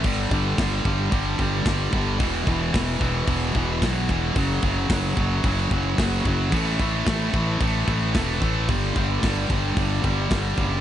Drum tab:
CC |xxxxxxxx|xxxxxxxx|xxxxxxxx|xxxxxxxx|
SD |--o---o-|--o---o-|--o---o-|--o---o-|
BD |oooooooo|oooooooo|oooooooo|oooooooo|

CC |xxxxxxxx|
SD |--o---o-|
BD |oooooooo|